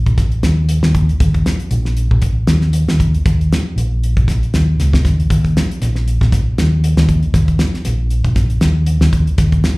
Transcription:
0.06 A#1, kick, closed hi-hat
0.18 kick, snare, closed hi-hat
0.32 closed hi-hat
0.43 D#2, snare, closed hi-hat
0.69 closed hi-hat
0.83 D#2, snare
0.95 kick, closed hi-hat
1.09 closed hi-hat
1.20 D#2, kick, closed hi-hat
1.34 kick, closed hi-hat
1.46 snare, closed hi-hat
1.60 closed hi-hat
1.71 A#1, closed hi-hat
1.85 snare
1.97 closed hi-hat
2.11 A#1, kick
2.22 kick, closed hi-hat
2.47 D#2, snare, closed hi-hat
2.61 snare
2.73 closed hi-hat
2.88 D#2, snare, closed hi-hat
3.00 kick, closed hi-hat
3.15 closed hi-hat
3.26 D#2, kick, closed hi-hat
3.41 closed hi-hat
3.52 snare, closed hi-hat
3.76 A#1, closed hi-hat
4.04 closed hi-hat
4.17 A#1, kick, closed hi-hat
4.28 kick, snare, closed hi-hat
4.43 closed hi-hat
4.54 D#2, snare, closed hi-hat
4.80 C#2, snare, closed hi-hat
4.93 kick, snare
5.05 D#2, kick, snare, closed hi-hat
5.20 closed hi-hat
5.30 D#2, kick, closed hi-hat
5.45 kick, closed hi-hat
5.57 snare, closed hi-hat
5.71 closed hi-hat
5.82 A#1, snare, closed hi-hat
5.95 snare
6.08 closed hi-hat
6.21 A#1, kick, snare
6.32 kick, snare, closed hi-hat
6.58 D#2, snare, closed hi-hat
6.84 closed hi-hat
6.97 D#2, snare, closed hi-hat
7.09 kick, closed hi-hat
7.23 closed hi-hat
7.34 D#2, kick, snare, closed hi-hat
7.48 kick, closed hi-hat
7.59 snare, closed hi-hat
7.74 snare
7.85 A#1, snare, closed hi-hat
8.10 closed hi-hat
8.24 A#1, kick, closed hi-hat
8.36 kick, snare, closed hi-hat
8.50 closed hi-hat
8.61 D#2, snare, closed hi-hat
8.86 closed hi-hat
9.01 D#2, snare
9.13 kick, closed hi-hat
9.27 closed hi-hat
9.38 D#2, kick, snare, closed hi-hat
9.52 kick, closed hi-hat
9.64 snare, closed hi-hat

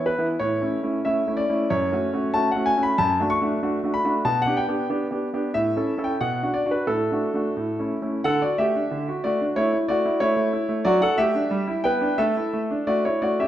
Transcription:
Already playing: E3 B3 E4
0.06 B4
0.18 E3 B3 E4
0.39 A2 C#5
0.62 A3 C#4 E4
0.83 A3 C#4 E4
1.05 A3 C#4 E4 E5
1.27 A3 C#4 E4
1.37 D5
1.49 A3 C#4 E4
1.70 F#2 C#5
1.92 A3 C#4 F#4
2.13 A3 C#4 F#4
2.34 A3 C#4 F#4 A5
2.51 F#5
2.56 A3 C#4 F#4
2.66 G#5
2.77 A3 C#4 F#4
2.83 B5
2.98 F#2 A5
3.20 A3 D4 F#4
3.30 C#6
3.41 A3 D4 F#4
3.63 A3 D4 F#4
3.84 A3 D4 F#4
3.94 B5
4.04 A3 D4 F#4
4.25 B2 A5
4.42 F#5
4.46 B3 D4 G4
4.57 G5
4.68 B3 D4 G4
4.90 B3 D4 G4
5.11 B3 D4 G4
5.33 B3 D4 G4
5.54 A2 E5
5.76 C#4 E4 A4
5.98 C#4 E4 A4
6.04 G5
6.21 B2 F#5
6.43 D4 F#4
6.54 D5
6.66 D4 F#4
6.71 B4
6.87 A2 A4
7.11 A3 D4 F#4
7.34 A3 D4 F#4
7.57 A2
7.79 A3 C#4 E4
8.02 A3 C#4 E4
8.24 D3 A4 F#5
8.42 F#4 D5
8.58 A3 G4 E5
8.75 D4
8.91 D3
9.08 F#4
9.24 A3 F#4 D5
9.41 D4
9.56 A3 E4 C#5
9.73 E4
9.88 A3 F#4 D5
10.05 E4
10.20 A3 E4 C#5
10.37 A3
10.53 E4
10.69 A3
10.85 F#3 F#4 D5
11.01 F#4 A4 F#5
11.18 A3 G4 E5
11.35 D4
11.51 G3
11.67 E4
11.84 B3 B4 G5
12.01 D4
12.18 A3 A4 E5
12.37 E4
12.53 A3
12.71 D4
12.87 A3 F#4 D5
13.05 E4 C#5
13.22 A3 F#4 D5
13.39 C#4 G4 E5

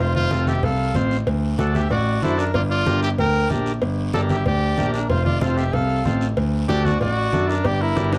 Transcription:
0.00 F1 F4 C5, long guiro
0.15 F4 C5, high conga
0.31 F1 C4 F4 A4, high conga, short guiro
0.47 G4 E5, high conga, short guiro
0.63 C2 A4 F5, cowbell, high conga, low conga, long guiro
0.95 A1 C4 F4 C5, high conga, short guiro
1.11 short guiro
1.27 D2, cowbell, high conga, long guiro
1.58 D2 D4 F#4 A4 F#5, high conga, short guiro
1.74 G4 E5, high conga, short guiro
1.90 A1 F#4 D5, cowbell, high conga, low conga, long guiro
2.22 F#2 D4 E4 F#4 A4 C5, high conga, short guiro
2.38 D4 A#4, short guiro
2.54 G1 F4 D5, cowbell, high conga, low conga, long guiro
2.70 F4 D5
2.86 G1 D4 G4 A#4, high conga, short guiro
3.03 G4 E5, short guiro
3.18 D2 A#4 G5, cowbell, high conga, low conga, long guiro
3.50 A#1 D4 G4 A#4, high conga, short guiro
3.66 short guiro
3.82 G1, cowbell, high conga, long guiro
4.13 G1 D4 G4 A4 A#4 D5, high conga, short guiro
4.29 G4 E5, high conga, short guiro
4.46 D2 G4 D5, cowbell, high conga, low conga, long guiro
4.77 A#1 D4 G4 A#4, high conga, short guiro
4.94 D4 A#4, short guiro
5.09 F1 F4 C5, cowbell, high conga, low conga, long guiro
5.25 F4 D5, high conga
5.41 F1 C4 F4 A4 C5, high conga, short guiro
5.57 G4 E5, short guiro
5.73 C2 A4 F5, cowbell, high conga, low conga, long guiro
6.05 A1 C4 F4 A4, high conga, short guiro
6.21 short guiro
6.37 D2, cowbell, high conga, long guiro
6.68 D2 D4 F#4 G4 A4 D5, high conga, short guiro
6.85 F#4 D5, high conga, short guiro
7.00 A1 F#4 D5, cowbell, high conga, low conga, long guiro
7.32 F#2 D4 F#4 A4, high conga, short guiro
7.49 D4 A#4, short guiro
7.64 G1 G4 D5, cowbell, high conga, low conga, long guiro
7.81 E4 A#4
7.96 G1 D4 G4 A#4, high conga, short guiro
8.13 D4 A#4, high timbale, short guiro

